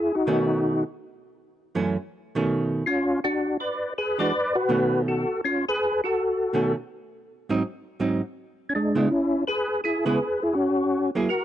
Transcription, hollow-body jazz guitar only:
0.27 B2 D#3 A3 C#4
1.75 F#2 E3 A3 C#4
2.35 B2 D#3 A3 C#4
4.19 E3 G#3 D4 F#4
4.69 B2 D#3 A3 C#4
6.53 B2 D#3 A3 C#4
7.49 G#2 F#3 C4 D#4
8.00 G#2 F#3 C4 D#4
8.95 C#3 G#3 B3 E4
10.05 C#3 G#3 B3 E4
11.15 F#3 A#3 E4 G#4

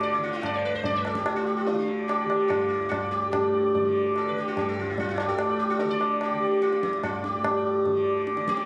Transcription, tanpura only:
Already playing: D2 A2 D3
0.18 D3
0.70 D2
1.23 A2
1.72 D3
2.25 D3
2.76 D2
3.27 A2
3.79 D3
4.30 D3
4.80 D2
5.31 A2
5.84 D3
6.33 D3
6.84 D2
7.35 A2
7.86 D3
8.37 D3

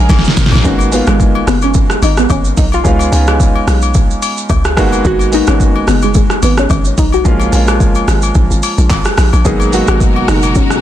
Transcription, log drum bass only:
0.09 A#1
0.37 G#1
0.52 A#1
0.65 G#1
1.07 G#1
1.47 F#1
2.02 G#1
2.30 G#1
2.57 B1
2.85 C#2
3.12 C#2
3.67 B1
4.50 C#2
4.77 G#1
5.05 G#1
5.48 G#1
5.87 F#1
6.42 G#1
6.70 G#1
6.98 B1
7.25 A#1
7.52 A#1
8.07 G#1
8.35 A#1
8.50 G#1
8.78 A#1
8.90 G#1
9.18 A#1
9.33 A#1
9.45 G#1
9.88 G#1
10.28 F#1

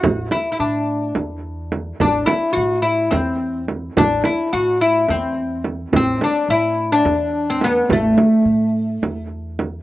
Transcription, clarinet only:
2.00 D4
2.28 E4
2.56 F#4
2.84 E4
3.12 C4
3.96 D4
4.24 E4
4.53 F#4
4.82 E4
5.08 C4
5.15 B3
5.23 C4
5.92 C4
6.23 D4
6.51 E4
6.92 D4
7.62 B3
7.91 A#3
8.05 A3

